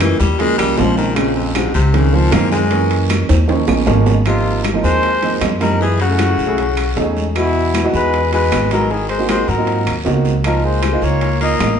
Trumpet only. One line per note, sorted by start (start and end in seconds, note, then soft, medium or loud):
4.28 4.63 F4 medium
4.84 5.38 C5 loud
5.62 5.79 A#4 medium
5.81 5.99 G#4 loud
6.01 7.13 F#4 medium
7.37 7.90 E4 medium
7.96 8.31 B4 loud
8.34 8.69 B4 medium
8.73 8.93 A#4 medium
8.91 9.09 G#4 medium
9.09 9.27 C5 medium
9.30 9.50 C5 medium
9.49 9.99 A#4 medium
10.44 10.66 A#4 medium
10.65 11.05 C5 medium
11.03 11.42 C#5 medium
11.43 11.80 D#5 medium